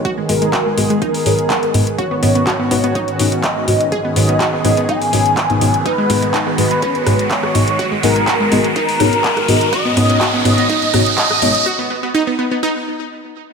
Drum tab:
HH |x-oxx-oxxooxxxox|x-oxx-oxxxoxx-ox|x-oxx-oxxooxxxox|x-oxx-oxxxoxx-ox|
CP |----x-------x---|----x-------x---|----x-------x---|----x-------x---|
SD |----------------|----------------|----------------|----------r--r--|
BD |o---o---o---o---|o---o---o---o---|o---o---o---o---|o---o---o---o---|

HH |x-oxx-oxxooxxxox|x-oxx-oxxxoxx-ox|----------------|
CP |----x-------x---|----x-------x---|----------------|
SD |----------r--r--|----------r--r--|----------------|
BD |o---o---o---o---|o---o---o---o---|----------------|